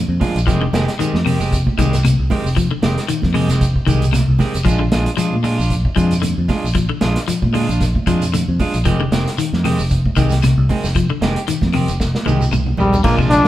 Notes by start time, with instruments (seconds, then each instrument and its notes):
Already playing: clean electric guitar D3
0.08 fingered electric bass F2
0.20 clean electric guitar F3 G#3 D4 F4, kick, open hi-hat, high conga, low conga, shekere
0.35 fingered electric bass A#1, closed hi-hat, shekere
0.47 fingered electric bass F1, clean electric guitar D#3 F3 G#3 C4 G4, kick, closed hi-hat, high conga, shekere
0.61 clean electric guitar D3
0.73 fingered electric bass F1, clean electric guitar D#3 G#3 C4 G4, snare, closed hi-hat, high conga, shekere
0.88 snare, closed hi-hat, shekere
0.99 clean electric guitar D#3 G#3 C4 G4, muted fingered electric bass stroke, closed hi-hat, high conga, shekere
1.13 fingered electric bass F2, snare, high conga
1.25 clean electric guitar C3 D#3 C4 G4, open hi-hat, low conga, shekere
1.40 fingered electric bass F1, clean electric guitar G#3 C4 G4, shekere
1.52 kick, closed hi-hat, high conga, shekere
1.66 kick, high conga
1.78 fingered electric bass C2, clean electric guitar D#3 G#3 C4 G4, kick, snare, closed hi-hat, low conga, shekere
1.93 snare, closed hi-hat, shekere
2.04 clean electric guitar C3, closed hi-hat, high conga, shekere
2.19 fingered electric bass C2
2.30 clean electric guitar D#3 G#3 C4 G4, kick, open hi-hat, high conga, low conga, shekere
2.44 fingered electric bass F1, shekere
2.56 clean electric guitar F3, kick, closed hi-hat, high conga, shekere
2.71 clean electric guitar D3
2.82 fingered electric bass F1, clean electric guitar D#3 G#3 C4 G4, snare, closed hi-hat, high conga, shekere
2.98 snare, closed hi-hat, shekere
3.08 clean electric guitar D#3, muted fingered electric bass stroke, closed hi-hat, high conga, shekere
3.22 fingered electric bass F2, kick, snare, high conga
3.34 clean electric guitar C3 D#3 G#3 C4 G4, open hi-hat, high conga, low conga, shekere
3.49 fingered electric bass F1, clean electric guitar G#3 C4 G4, snare, closed hi-hat, shekere
3.60 kick, closed hi-hat, high conga, low conga, shekere
3.76 kick
3.87 fingered electric bass C2, clean electric guitar D#3 G#3 G4, kick, closed hi-hat, low conga, shekere
4.02 closed hi-hat, shekere
4.12 clean electric guitar C3, snare, closed hi-hat, high conga, shekere
4.28 fingered electric bass C2
4.39 clean electric guitar D#3 G#3 C4 G4, kick, snare, open hi-hat, high conga, low conga, shekere
4.54 fingered electric bass F1, closed hi-hat, shekere
4.65 fingered electric bass A#1, clean electric guitar F3 G#3 D4 F4, kick, closed hi-hat, high conga, shekere
4.79 clean electric guitar D3
4.92 fingered electric bass A#1, clean electric guitar G#3 D4 F4, snare, closed hi-hat, high conga, shekere
5.06 closed hi-hat, shekere
5.17 clean electric guitar F3 G#3 D4 F4, muted fingered electric bass stroke, closed hi-hat, high conga, shekere
5.33 fingered electric bass A#2, high conga
5.43 clean electric guitar G#3 D4 F4, muted clean electric guitar stroke, open hi-hat, low conga, shekere
5.58 fingered electric bass A#1, clean electric guitar D4 F4, shekere
5.70 kick, closed hi-hat, high conga, low conga, shekere
5.85 kick
5.96 fingered electric bass F2, clean electric guitar F3 G#3 D4 F4, kick, closed hi-hat, shekere
6.11 closed hi-hat, shekere
6.22 clean electric guitar D3, closed hi-hat, high conga, shekere
6.38 fingered electric bass F2
6.48 clean electric guitar G#3 D4 F4, kick, snare, open hi-hat, high conga, low conga, shekere
6.64 fingered electric bass A#1, shekere
6.75 clean electric guitar F3, kick, closed hi-hat, high conga, shekere
6.89 clean electric guitar D3
7.01 fingered electric bass A#1, clean electric guitar G#3 D4 F4, snare, closed hi-hat, high conga, shekere
7.16 snare, closed hi-hat, shekere
7.28 clean electric guitar F3, muted fingered electric bass stroke, closed hi-hat, high conga, shekere
7.42 fingered electric bass A#2, kick, high conga
7.53 clean electric guitar D3 G#3 D4 F4, open hi-hat, high conga, low conga, shekere
7.68 fingered electric bass A#1, clean electric guitar D4 F4, closed hi-hat, shekere
7.81 kick, snare, closed hi-hat, high conga, low conga, shekere
7.95 kick, high conga
8.07 fingered electric bass F2, clean electric guitar F3 G#3 D4 F4, kick, closed hi-hat, low conga, shekere
8.22 closed hi-hat, shekere
8.34 clean electric guitar D3, closed hi-hat, high conga, shekere
8.48 fingered electric bass F2
8.60 clean electric guitar G#3 D4 F4, kick, open hi-hat, high conga, low conga, shekere
8.74 fingered electric bass A#1, closed hi-hat, shekere
8.85 fingered electric bass F1, clean electric guitar D#3 F3 G#3 C4 G4, kick, closed hi-hat, high conga, shekere
9.00 clean electric guitar D3
9.12 fingered electric bass F1, clean electric guitar D#3 C4 G4, snare, closed hi-hat, high conga, shekere
9.26 snare, closed hi-hat, shekere
9.38 clean electric guitar D#3, muted fingered electric bass stroke, closed hi-hat, high conga, shekere
9.53 fingered electric bass F2, snare, high conga
9.64 clean electric guitar C3 D#3 G#3 C4 G4, open hi-hat, high conga, low conga, shekere
9.79 fingered electric bass F1, shekere
9.90 kick, closed hi-hat, high conga, shekere
10.06 kick, high conga
10.16 fingered electric bass C2, clean electric guitar D#3 G#3 C4 G4, kick, snare, closed hi-hat, low conga, shekere
10.29 snare, closed hi-hat, shekere
10.42 clean electric guitar C3, snare, closed hi-hat, high conga, shekere
10.58 fingered electric bass C2
10.69 clean electric guitar D#3 G#3 C4, kick, open hi-hat, high conga, low conga, shekere
10.84 fingered electric bass F1, snare, shekere
10.95 clean electric guitar F3, kick, closed hi-hat, high conga, shekere
11.10 clean electric guitar D3
11.21 fingered electric bass F1, clean electric guitar D#3 G#3 C4 G4, snare, closed hi-hat, high conga, shekere
11.36 closed hi-hat, shekere
11.47 clean electric guitar D#3, muted fingered electric bass stroke, closed hi-hat, high conga, shekere
11.61 fingered electric bass F2, kick, snare, high conga
11.73 clean electric guitar C3 D#3 C4 G4, muted clean electric guitar stroke, open hi-hat, low conga, shekere
11.88 fingered electric bass F1, closed hi-hat, shekere
12.00 kick, snare, high conga, low conga, shekere
12.15 snare, high conga
12.25 fingered electric bass C2, clean electric guitar D#3 G#3 C4 G4, high tom, low conga, shekere
12.40 high tom, shekere
12.51 fingered electric bass C2, clean electric guitar C3, mid tom, high conga, shekere
12.66 mid tom
12.77 fingered electric bass A#1, clean electric guitar D#3 G#3 C4 G4, trombone G3, floor tom, low conga, shekere
12.93 floor tom, low conga, shekere
13.04 fingered electric bass A#1, clean electric guitar D3 F3 G#3 D4 F4, trombone A#3, kick, crash, low conga, shekere
13.18 clean electric guitar C3 G#3 D4 F4, kick, shekere
13.30 clean electric guitar F3 G#3 D4 F4, trombone D4, snare, closed hi-hat, shekere
13.45 fingered electric bass A#1, snare